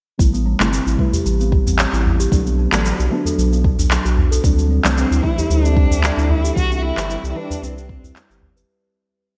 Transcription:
0.18 analog synth bass A1, synth stab C3 G3 A3 B3 E4, steel tongue drum G3, kick, shaker
0.33 steel tongue drum B3, shaker
0.46 steel tongue drum G3
0.59 analog synth bass G1, synth stab C3 G3 A3 E4 B4, steel tongue drum C4, clap, shaker
0.72 steel tongue drum G3, shaker
0.86 analog synth bass A1, steel tongue drum E4, shaker
0.97 synth stab C3 G3 A3 E4 B4, steel tongue drum G3, kick
1.13 steel tongue drum G4, udu, shaker
1.25 analog synth bass A1, steel tongue drum G3, shaker
1.40 steel tongue drum B3, shaker
1.52 steel tongue drum G3, kick
1.67 analog synth bass A1, steel tongue drum C4, udu, shaker
1.79 steel tongue drum G3, clap, shaker
1.93 analog synth bass A1, steel tongue drum E4, shaker
2.06 steel tongue drum G3, udu
2.20 steel tongue drum G4, shaker
2.30 analog synth bass B1, synth stab D3 F#3 A3 B3 D4, steel tongue drum F#3, kick, shaker
2.46 steel tongue drum B3, shaker
2.59 steel tongue drum F#3
2.71 analog synth bass A1, synth stab D3 F#3 A3 B3 D4, steel tongue drum D4, clap, shaker
2.85 steel tongue drum F#3, shaker
2.99 analog synth bass B1, steel tongue drum F#4, shaker
3.09 synth stab D3 F#3 A3 B3, steel tongue drum F#3
3.13 synth stab D4
3.25 steel tongue drum A4, udu, shaker
3.38 analog synth bass B1, steel tongue drum F#3, shaker
3.52 steel tongue drum B3, shaker
3.64 steel tongue drum F#3, kick
3.79 analog synth bass B1, steel tongue drum D4, udu, shaker
3.91 steel tongue drum F#3, clap, shaker
4.05 analog synth bass B1, steel tongue drum F#4, shaker
4.17 steel tongue drum F#3, udu
4.32 steel tongue drum A4, shaker
4.43 analog synth bass D2, synth stab E3 G3 A3 C4 D4, steel tongue drum G3, ambient pad D4, kick, shaker
4.58 steel tongue drum C4, shaker
4.66 ambient pad A4
4.70 steel tongue drum G3
4.81 synth stab E3 G3 A3, ambient pad C5, clap
4.85 analog synth bass C2, synth stab C4 D4, steel tongue drum D4, shaker
4.97 steel tongue drum G3, cello C4, shaker
5.10 analog synth bass D2, steel tongue drum E4, ambient pad E5, shaker
5.21 synth stab E3 G3 A3 C4, steel tongue drum G3, cello E4, kick
5.25 synth stab D4
5.38 steel tongue drum G4, ambient pad G5, udu, shaker
5.50 analog synth bass D2, steel tongue drum G3, cello D4, shaker
5.64 steel tongue drum C4, shaker
5.77 steel tongue drum G3, kick
5.91 analog synth bass D2, steel tongue drum D4, udu, shaker
6.03 steel tongue drum G3, clap, shaker
6.17 analog synth bass D2, steel tongue drum E4, shaker
6.29 steel tongue drum G3, cello E4, udu
6.44 steel tongue drum G4, shaker
6.55 analog synth bass C2, synth stab E3 G3 B3 C4 D4, steel tongue drum G3, cello F#4, kick, shaker
6.71 steel tongue drum C4, shaker
6.76 cello F#4
6.82 steel tongue drum G3, cello E4, ambient pad G4 D5
6.96 analog synth bass G1, synth stab E3 G3 C4 D4 B4, steel tongue drum E4, clap, shaker
7.03 ambient pad B4
7.10 steel tongue drum G3, shaker
7.24 analog synth bass C2, steel tongue drum G4, shaker
7.30 cello E4
7.34 synth stab E3 G3 C4 B4, steel tongue drum G3, cello D4
7.38 synth stab D4
7.50 steel tongue drum B4, udu, shaker
7.63 analog synth bass C2, steel tongue drum G3, cello C4, shaker
7.77 steel tongue drum C4, shaker
7.89 kick
8.03 analog synth bass C2, steel tongue drum E4, udu, shaker
8.15 steel tongue drum G3, clap, shaker
8.30 analog synth bass G1, steel tongue drum G4, shaker
8.42 steel tongue drum G3, udu
8.56 steel tongue drum B4, shaker

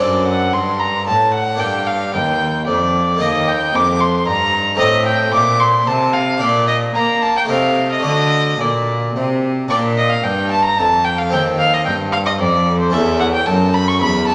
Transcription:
Already playing: harpsichord C4 D4
0.00 harpsichord F#2 A4, cello F#2, violin D5
0.27 violin F#5
0.53 harpsichord G2, cello G2, violin C6
0.80 violin A#5
1.07 harpsichord A2, cello A2, violin A5
1.34 violin F#5
1.56 harpsichord A#3 D4 G4, violin G5
1.60 harpsichord G2, cello G2
1.87 violin F5
2.14 harpsichord D#2, cello D#2, violin G5
2.67 harpsichord F2, cello F2, violin D5
3.16 harpsichord A#3 D#4 G4
3.21 harpsichord D#2, cello D#2, violin D#5
3.48 violin G5
3.73 harpsichord F2, cello F2, violin D6
4.00 violin C6
4.26 harpsichord G2, cello G2, violin A#5
4.75 harpsichord A3 C4 G4, violin D#5
4.80 harpsichord A2, cello A2
5.06 violin G5
5.33 harpsichord A#2, cello A#2, violin D6
5.60 violin C6
5.86 harpsichord C3, cello C3, violin A5
6.14 violin F5
6.38 harpsichord A#2 D4 G4, violin D5
6.42 cello A#2
6.68 violin D#5
6.94 harpsichord A#3, cello A#3, violin A#5
7.22 violin A5
7.37 violin G5
7.45 harpsichord A3 D#4 G4
7.49 harpsichord C3, cello C3, violin F5
7.92 violin D#5
7.99 harpsichord A3 D4 F#4
8.05 harpsichord D3, cello D3, violin D#5
8.58 harpsichord A#2, cello A#2, violin D5
9.16 cello C3, harpsichord C3
9.68 cello A#2, harpsichord A#2 D4 G4, violin D5
9.97 violin D#5
10.10 violin F5
10.23 harpsichord G2, cello G2, violin G5
10.51 violin A5
10.65 violin A#5
10.78 harpsichord F2, cello F2, violin A5
11.05 violin G5
11.18 violin F5
11.29 harpsichord D#2 C4 G4, cello D#2, violin G5
11.59 violin F5
11.73 violin D#5
11.85 harpsichord G2, cello G2, violin G5
12.12 violin F5
12.26 violin D#5
12.39 harpsichord F2, cello F2, violin D5
12.80 violin C5
12.90 harpsichord E2 C#4 A4, violin E5
12.94 cello E2
13.20 violin F#5
13.34 violin G5
13.46 harpsichord F#2, cello F#2, violin A5
13.74 violin B5
13.88 violin C#6
14.00 harpsichord E2, cello E2, violin B5
14.27 violin A5

